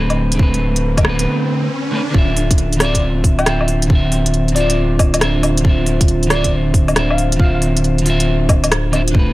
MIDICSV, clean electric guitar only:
0, 0, Header, 1, 2, 480
1, 0, Start_track
1, 0, Tempo, 437956
1, 431, Time_signature, 4, 2, 24, 8
1, 10226, End_track
2, 0, Start_track
2, 0, Title_t, "Clean electric guitar"
2, 0, Program_c, 0, 27
2, 0, Note_on_c, 0, 50, 75
2, 0, Note_on_c, 0, 57, 66
2, 0, Note_on_c, 0, 60, 71
2, 0, Note_on_c, 0, 71, 81
2, 370, Note_off_c, 0, 50, 0
2, 383, Note_on_c, 0, 50, 93
2, 398, Note_off_c, 0, 57, 0
2, 411, Note_on_c, 0, 57, 85
2, 418, Note_off_c, 0, 60, 0
2, 425, Note_off_c, 0, 71, 0
2, 440, Note_on_c, 0, 60, 83
2, 468, Note_on_c, 0, 71, 100
2, 1096, Note_off_c, 0, 50, 0
2, 1109, Note_on_c, 0, 50, 97
2, 1121, Note_off_c, 0, 57, 0
2, 1135, Note_off_c, 0, 60, 0
2, 1138, Note_on_c, 0, 57, 90
2, 1150, Note_off_c, 0, 71, 0
2, 1171, Note_on_c, 0, 60, 84
2, 1197, Note_on_c, 0, 71, 103
2, 1830, Note_off_c, 0, 50, 0
2, 1844, Note_off_c, 0, 57, 0
2, 1861, Note_off_c, 0, 60, 0
2, 1874, Note_off_c, 0, 71, 0
2, 2094, Note_on_c, 0, 50, 86
2, 2106, Note_on_c, 0, 57, 76
2, 2123, Note_on_c, 0, 60, 77
2, 2138, Note_on_c, 0, 71, 95
2, 2181, Note_off_c, 0, 50, 0
2, 2187, Note_off_c, 0, 57, 0
2, 2195, Note_off_c, 0, 60, 0
2, 2203, Note_off_c, 0, 71, 0
2, 2307, Note_on_c, 0, 50, 94
2, 2337, Note_on_c, 0, 60, 82
2, 2360, Note_off_c, 0, 60, 0
2, 2365, Note_on_c, 0, 65, 84
2, 2391, Note_on_c, 0, 76, 102
2, 3019, Note_off_c, 0, 50, 0
2, 3032, Note_on_c, 0, 50, 93
2, 3058, Note_off_c, 0, 65, 0
2, 3060, Note_on_c, 0, 60, 86
2, 3071, Note_off_c, 0, 76, 0
2, 3090, Note_on_c, 0, 65, 88
2, 3119, Note_on_c, 0, 76, 102
2, 3752, Note_off_c, 0, 50, 0
2, 3765, Note_off_c, 0, 60, 0
2, 3780, Note_off_c, 0, 65, 0
2, 3784, Note_on_c, 0, 50, 77
2, 3795, Note_off_c, 0, 76, 0
2, 3798, Note_on_c, 0, 60, 70
2, 3812, Note_on_c, 0, 65, 69
2, 3826, Note_on_c, 0, 76, 82
2, 4226, Note_off_c, 0, 50, 0
2, 4240, Note_on_c, 0, 50, 93
2, 4254, Note_off_c, 0, 60, 0
2, 4261, Note_off_c, 0, 65, 0
2, 4269, Note_off_c, 0, 76, 0
2, 4272, Note_on_c, 0, 60, 84
2, 4298, Note_on_c, 0, 65, 85
2, 4330, Note_on_c, 0, 76, 97
2, 4943, Note_off_c, 0, 50, 0
2, 4956, Note_on_c, 0, 50, 96
2, 4971, Note_off_c, 0, 60, 0
2, 4984, Note_off_c, 0, 65, 0
2, 4984, Note_on_c, 0, 60, 88
2, 5000, Note_off_c, 0, 76, 0
2, 5011, Note_on_c, 0, 65, 87
2, 5043, Note_on_c, 0, 76, 104
2, 5674, Note_off_c, 0, 50, 0
2, 5687, Note_off_c, 0, 60, 0
2, 5690, Note_on_c, 0, 50, 76
2, 5701, Note_off_c, 0, 65, 0
2, 5704, Note_on_c, 0, 60, 70
2, 5717, Note_off_c, 0, 76, 0
2, 5718, Note_on_c, 0, 65, 70
2, 5736, Note_on_c, 0, 76, 85
2, 6136, Note_off_c, 0, 50, 0
2, 6149, Note_on_c, 0, 50, 90
2, 6167, Note_off_c, 0, 60, 0
2, 6175, Note_off_c, 0, 65, 0
2, 6183, Note_off_c, 0, 76, 0
2, 6183, Note_on_c, 0, 60, 84
2, 6210, Note_on_c, 0, 65, 85
2, 6240, Note_on_c, 0, 76, 104
2, 6858, Note_off_c, 0, 50, 0
2, 6871, Note_on_c, 0, 50, 98
2, 6887, Note_off_c, 0, 60, 0
2, 6901, Note_off_c, 0, 65, 0
2, 6902, Note_on_c, 0, 60, 86
2, 6915, Note_off_c, 0, 76, 0
2, 6931, Note_on_c, 0, 65, 89
2, 6961, Note_on_c, 0, 76, 106
2, 7591, Note_off_c, 0, 50, 0
2, 7606, Note_off_c, 0, 60, 0
2, 7613, Note_on_c, 0, 50, 77
2, 7621, Note_off_c, 0, 65, 0
2, 7629, Note_on_c, 0, 60, 70
2, 7636, Note_off_c, 0, 76, 0
2, 7642, Note_on_c, 0, 65, 71
2, 7660, Note_on_c, 0, 76, 83
2, 8059, Note_off_c, 0, 50, 0
2, 8072, Note_on_c, 0, 50, 91
2, 8087, Note_off_c, 0, 60, 0
2, 8096, Note_off_c, 0, 65, 0
2, 8101, Note_on_c, 0, 60, 82
2, 8105, Note_off_c, 0, 76, 0
2, 8131, Note_on_c, 0, 65, 87
2, 8159, Note_on_c, 0, 76, 100
2, 8775, Note_off_c, 0, 50, 0
2, 8788, Note_on_c, 0, 50, 98
2, 8806, Note_off_c, 0, 60, 0
2, 8819, Note_on_c, 0, 60, 86
2, 8821, Note_off_c, 0, 65, 0
2, 8835, Note_off_c, 0, 76, 0
2, 8845, Note_on_c, 0, 65, 89
2, 8875, Note_on_c, 0, 76, 102
2, 9509, Note_off_c, 0, 50, 0
2, 9525, Note_off_c, 0, 60, 0
2, 9538, Note_off_c, 0, 65, 0
2, 9553, Note_off_c, 0, 76, 0
2, 9774, Note_on_c, 0, 50, 84
2, 9790, Note_on_c, 0, 60, 75
2, 9803, Note_on_c, 0, 65, 78
2, 9818, Note_on_c, 0, 76, 93
2, 9861, Note_off_c, 0, 50, 0
2, 9869, Note_off_c, 0, 60, 0
2, 9876, Note_off_c, 0, 65, 0
2, 9883, Note_off_c, 0, 76, 0
2, 9988, Note_on_c, 0, 50, 89
2, 10015, Note_on_c, 0, 57, 84
2, 10042, Note_on_c, 0, 60, 82
2, 10073, Note_on_c, 0, 71, 99
2, 10226, Note_off_c, 0, 50, 0
2, 10226, Note_off_c, 0, 57, 0
2, 10226, Note_off_c, 0, 60, 0
2, 10226, Note_off_c, 0, 71, 0
2, 10226, End_track
0, 0, End_of_file